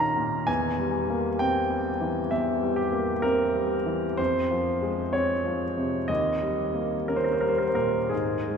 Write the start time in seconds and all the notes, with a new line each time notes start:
Already playing: A#2 D#3 A#3 C#4 C6
0.00 A#5
0.17 A#2
0.47 E2 G#5
0.79 G3
1.10 A#3
1.39 C4 G5
1.70 G3
2.01 E3
2.31 E2 E5
2.63 G3
2.76 G4
2.92 A#3
3.22 C4 A#4
3.55 G3
3.86 E3
4.17 F2 C5
4.51 F3
4.82 G#3
5.13 C4 C#5
5.46 F3
5.77 C3
6.08 D#2 D#5
6.42 G3
6.75 A#3
7.08 C#4 A#4
7.16 C5
7.24 A#4
7.33 C5
7.41 G3 A#4
7.49 C5
7.58 A#4
7.67 C5
7.74 A#2 A#4
8.10 G#2 G#4
8.48 G#3